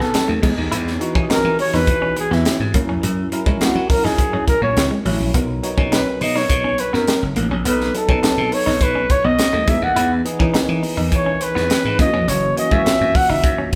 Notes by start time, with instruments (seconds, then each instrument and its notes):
Already playing: tine electric piano F#3 B3 D#4 A4 B4
0.00 slap bass B1, clean electric guitar B3, flugelhorn A4, snare
0.14 muted clean electric guitar stroke, snare, closed hi-hat
0.28 slap bass D#2, clean electric guitar A3
0.42 slap bass E2, tine electric piano E3 B3 D#4 G#4, clean electric guitar G#3, kick, crash
0.58 slap bass D#2
0.72 slap bass E2, clean electric guitar E4, closed hi-hat
0.87 snare
1.00 tine electric piano E3 B3 D#4 F#4, muted clean electric guitar stroke, closed hi-hat
1.15 tine electric piano E3 B3 D#4 G4, slap bass E3, clean electric guitar C#4, kick
1.22 tine electric piano G#4
1.30 clean electric guitar D#4, flugelhorn A#4, muted slap bass stroke, snare, closed hi-hat
1.45 slap bass E3
1.59 flugelhorn C#5, muted clean electric guitar stroke, open hi-hat
1.73 slap bass E2, clean electric guitar D#4, flugelhorn B4, snare
1.87 slap bass E3, kick, closed hi-hat
2.02 clean electric guitar C#4
2.17 flugelhorn G#4, muted clean electric guitar stroke, closed hi-hat
2.31 slap bass E2, clean electric guitar B3, flugelhorn E4, snare
2.45 muted clean electric guitar stroke, snare, closed hi-hat
2.60 slap bass G#2
2.74 slap bass F#2, tine electric piano F#3 C#4 E4 A#4, clean electric guitar A#3, kick, closed hi-hat
2.89 slap bass F2, clean electric guitar C#4
3.03 slap bass F#2, clean electric guitar F#3, closed hi-hat
3.32 tine electric piano F#3 C#4 E4 A#4, muted clean electric guitar stroke, closed hi-hat
3.46 tine electric piano F#3 C#4 E4 F#4, slap bass F#3, clean electric guitar G#3, kick
3.61 clean electric guitar A#3, flugelhorn F#4, muted slap bass stroke, snare, closed hi-hat
3.75 slap bass F#3
3.90 flugelhorn A#4, muted clean electric guitar stroke, kick, open hi-hat
4.04 slap bass F#2, clean electric guitar D#4, flugelhorn G#4, snare
4.18 slap bass F#3, kick, closed hi-hat
4.33 slap bass F#2, clean electric guitar C#4
4.48 flugelhorn A#4, muted clean electric guitar stroke, kick, closed hi-hat
4.61 slap bass A#2, clean electric guitar A#3, flugelhorn C#5
4.77 slap bass C#2, muted clean electric guitar stroke, snare, closed hi-hat
4.91 clean electric guitar G#3
5.05 slap bass A1, tine electric piano F#3 C#4 E4 C#5, clean electric guitar F#3, open hi-hat
5.20 slap bass A#1
5.34 slap bass B1, tine electric piano F#3 B3 D#4 A#4, clean electric guitar B3, kick, closed hi-hat
5.63 tine electric piano F#3 B3 D#4 C#5, muted clean electric guitar stroke, closed hi-hat
5.77 slap bass B2, tine electric piano F#3 B3 D#4 G#4, clean electric guitar C#4, kick
5.92 clean electric guitar D#4, flugelhorn B4, snare, closed hi-hat
6.21 slap bass B2, flugelhorn D#5, muted clean electric guitar stroke, open hi-hat
6.36 clean electric guitar D#4, flugelhorn C#5, snare
6.49 slap bass B2, kick, closed hi-hat
6.64 clean electric guitar C#4
6.78 flugelhorn B4, muted clean electric guitar stroke, closed hi-hat
6.93 slap bass F#2, clean electric guitar B3, flugelhorn A#4, snare
7.07 muted clean electric guitar stroke, snare, closed hi-hat
7.22 slap bass F#1
7.36 slap bass A1, clean electric guitar A#3, closed hi-hat
7.51 slap bass A#1, clean electric guitar C#4
7.65 slap bass B1, tine electric piano F#3 B3 D#4 A4, clean electric guitar B3, flugelhorn B4, closed hi-hat
7.81 snare
7.94 tine electric piano F#3 B3 D#4 G#4, flugelhorn A4, muted clean electric guitar stroke, closed hi-hat
8.09 slap bass B2, tine electric piano F#3 B3 D#4 B4, clean electric guitar C#4, kick
8.23 clean electric guitar D#4, muted slap bass stroke, snare, closed hi-hat
8.38 slap bass B2
8.52 flugelhorn C#5, muted clean electric guitar stroke, open hi-hat
8.66 slap bass B1, clean electric guitar D#4, snare
8.81 slap bass B2, flugelhorn B4, kick, closed hi-hat
8.95 clean electric guitar C#4
9.10 flugelhorn C#5, muted clean electric guitar stroke, kick, closed hi-hat
9.24 slap bass B1, clean electric guitar B3, flugelhorn D#5
9.39 muted clean electric guitar stroke, snare, closed hi-hat
9.53 slap bass D#2, clean electric guitar A3
9.67 slap bass E2, tine electric piano E3 B3 D#4 F#4, clean electric guitar G#3, flugelhorn E5, kick, closed hi-hat
9.74 tine electric piano G#4
9.82 slap bass D#2, flugelhorn F#5
9.96 slap bass E2, clean electric guitar E4, closed hi-hat
10.25 tine electric piano E3 B3 D#4 G#4, muted clean electric guitar stroke, closed hi-hat
10.39 tine electric piano E3 B3 D#4 A#4, slap bass E3, clean electric guitar C#4, kick
10.54 clean electric guitar D#4, muted slap bass stroke, snare, closed hi-hat
10.69 slap bass E3
10.83 muted clean electric guitar stroke, open hi-hat
10.97 slap bass E2, clean electric guitar D#4
11.12 slap bass E3, flugelhorn C#5, kick, closed hi-hat
11.26 clean electric guitar C#4
11.41 flugelhorn B4, muted clean electric guitar stroke, closed hi-hat
11.55 slap bass E2, clean electric guitar B3, snare
11.70 muted clean electric guitar stroke, snare, closed hi-hat
11.85 slap bass G#2
11.99 slap bass F#2, tine electric piano E3 A#3 C#4 E4, clean electric guitar A#3, flugelhorn D#5, kick, closed hi-hat
12.06 tine electric piano F#4
12.14 slap bass F2, clean electric guitar C#4
12.28 slap bass F#1, clean electric guitar F#3, flugelhorn C#5, closed hi-hat
12.56 tine electric piano E3 A#3 C#4 F#4, flugelhorn D#5, muted clean electric guitar stroke, closed hi-hat
12.70 slap bass F#2, tine electric piano E3 A#3 C#4 F4, clean electric guitar G#3, flugelhorn E5, kick
12.78 tine electric piano F#4
12.86 clean electric guitar A#3, muted slap bass stroke, snare, closed hi-hat
13.01 slap bass F#2
13.15 flugelhorn F#5, muted clean electric guitar stroke, kick, open hi-hat
13.30 slap bass F#1, clean electric guitar D#4, flugelhorn E5
13.44 slap bass F#2, kick, closed hi-hat
13.58 clean electric guitar C#4